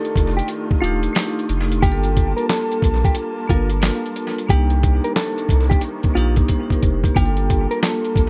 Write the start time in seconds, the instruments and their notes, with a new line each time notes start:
Already playing: string section D#3 A3 F4, vibraphone A3 D4 D#4 G4, clean electric guitar A4
0.05 closed hi-hat
0.16 sub bass F1, kick, closed hi-hat
0.37 clean electric guitar G4, closed hi-hat
0.48 closed hi-hat
0.71 kick
0.81 sub bass D#1, vibraphone A3 D4 D#4, clean electric guitar F4, closed hi-hat
0.85 vibraphone G4
1.03 closed hi-hat
1.13 vibraphone A3 D4 D#4, snare, clap, closed hi-hat
1.18 vibraphone G4
1.39 closed hi-hat
1.49 sub bass F1, closed hi-hat
1.72 closed hi-hat
1.81 sub bass G1, string section G3 A#3 A5, vibraphone A#3 D4 F4, clean electric guitar G4, kick, closed hi-hat
1.85 vibraphone G4
1.92 vibraphone A4
2.03 closed hi-hat
2.17 kick, closed hi-hat
2.37 clean electric guitar A#4, closed hi-hat
2.49 clean electric guitar A4, snare, clap, closed hi-hat
2.71 closed hi-hat
2.82 sub bass A#1, kick, closed hi-hat
3.04 clean electric guitar G4, kick, closed hi-hat
3.15 closed hi-hat
3.48 sub bass G1, vibraphone A#3 D4 F4, clean electric guitar F4, kick, closed hi-hat
3.52 vibraphone A#4
3.70 closed hi-hat
3.80 vibraphone A#3 D4 F4, snare, clap, closed hi-hat
3.85 vibraphone A4
4.06 closed hi-hat
4.16 closed hi-hat
4.38 closed hi-hat
4.47 sub bass C2, string section C3 D#3 A#3, vibraphone A#3 D4 D#4, clean electric guitar G4, kick, closed hi-hat
4.52 vibraphone G4
4.70 closed hi-hat
4.83 kick, closed hi-hat
5.04 clean electric guitar A#4, closed hi-hat
5.16 clean electric guitar A4, snare, clap, closed hi-hat
5.38 closed hi-hat
5.49 sub bass C2, kick, closed hi-hat
5.70 clean electric guitar G4, kick, closed hi-hat
5.81 closed hi-hat
6.03 kick, closed hi-hat
6.14 sub bass A#1, vibraphone A#3 D4 D#4, clean electric guitar F4, closed hi-hat
6.18 vibraphone G4
6.36 kick, closed hi-hat
6.48 vibraphone D#4 C5, kick, closed hi-hat
6.70 vibraphone A#4, kick, closed hi-hat
6.83 sub bass F1, kick, closed hi-hat
7.03 vibraphone A#3 G4, kick, closed hi-hat
7.14 sub bass G1, string section G3 A#3 F4 A4, vibraphone A#3 D4 F4, clean electric guitar G4, kick, closed hi-hat
7.19 vibraphone G4
7.26 vibraphone A4
7.37 closed hi-hat
7.50 kick, closed hi-hat
7.71 clean electric guitar A#4, closed hi-hat
7.83 clean electric guitar A4, snare, clap, closed hi-hat
8.05 closed hi-hat
8.16 sub bass A#1, kick, closed hi-hat